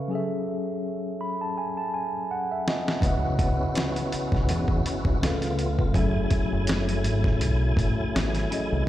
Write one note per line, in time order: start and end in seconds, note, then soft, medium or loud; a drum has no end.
0.00 0.11 C#3 medium
0.00 0.10 C#4 medium
0.00 0.10 A4 medium
0.00 0.11 B4 medium
0.00 0.11 F5 medium
0.08 2.97 F#3 medium
0.08 2.98 C#4 medium
0.08 2.99 G#4 medium
0.13 3.00 A4 medium
0.13 2.50 E5 medium
1.21 1.39 B5 medium
1.41 1.55 A5 medium
1.58 1.76 G#5 medium
1.77 1.92 A5 medium
1.94 2.27 G#5 medium
2.31 2.49 F#5 medium
2.52 2.66 E5 medium
2.68 3.01 D#5 medium
2.68 snare loud
2.88 snare medium
3.00 3.63 C#2 loud
3.00 5.17 C#3 medium
3.00 5.91 C#3 medium
3.00 5.91 B3 medium
3.00 5.17 C#4 medium
3.00 5.19 C#4 medium
3.00 5.19 E4 medium
3.00 5.19 F#4 medium
3.00 5.18 B4 medium
3.00 kick loud
3.00 closed hi-hat medium
3.04 5.19 D#5 medium
3.04 5.19 E5 medium
3.04 5.20 F#5 medium
3.39 kick loud
3.39 closed hi-hat medium
3.75 snare loud
3.75 closed hi-hat medium
3.96 closed hi-hat medium
4.12 muted fingered electric bass stroke soft
4.12 closed hi-hat medium
4.32 4.50 B1 medium
4.32 kick loud
4.32 snare soft
4.49 4.79 E2 loud
4.49 closed hi-hat medium
4.68 kick medium
4.86 closed hi-hat medium
5.05 5.19 C#2 medium
5.05 kick loud
5.21 5.82 C#2 medium
5.21 5.95 C#3 medium
5.21 8.83 A3 medium
5.21 5.92 C#4 medium
5.21 5.94 F4 medium
5.21 5.95 A4 medium
5.21 5.96 B4 medium
5.21 snare loud
5.21 closed hi-hat loud
5.25 5.96 F5 medium
5.42 snare soft
5.42 closed hi-hat soft
5.59 closed hi-hat medium
5.79 kick medium
5.92 6.25 F#1 loud
5.92 8.46 F#3 medium
5.92 8.84 F#3 medium
5.92 8.46 C#4 medium
5.92 8.89 E4 medium
5.92 8.47 G#4 medium
5.92 8.84 G#5 medium
5.92 kick loud
5.92 closed hi-hat medium
5.97 8.48 A4 medium
5.97 8.49 E5 medium
6.30 kick loud
6.30 closed hi-hat medium
6.52 7.05 F#1 medium
6.67 snare loud
6.67 closed hi-hat loud
6.89 closed hi-hat medium
7.04 7.42 G#1 medium
7.04 closed hi-hat medium
7.24 kick loud
7.24 snare soft
7.41 7.72 B1 loud
7.41 closed hi-hat medium
7.77 7.94 A1 medium
7.77 kick loud
7.77 closed hi-hat medium
8.15 8.45 G#1 medium
8.15 snare loud
8.15 closed hi-hat loud
8.35 snare soft
8.35 closed hi-hat soft
8.50 8.87 F#3 medium
8.50 8.85 C#4 medium
8.50 8.88 G#4 medium
8.50 8.88 A4 medium
8.50 8.88 D#5 medium
8.50 closed hi-hat medium
8.72 8.85 C2 loud
8.85 8.89 C#3 medium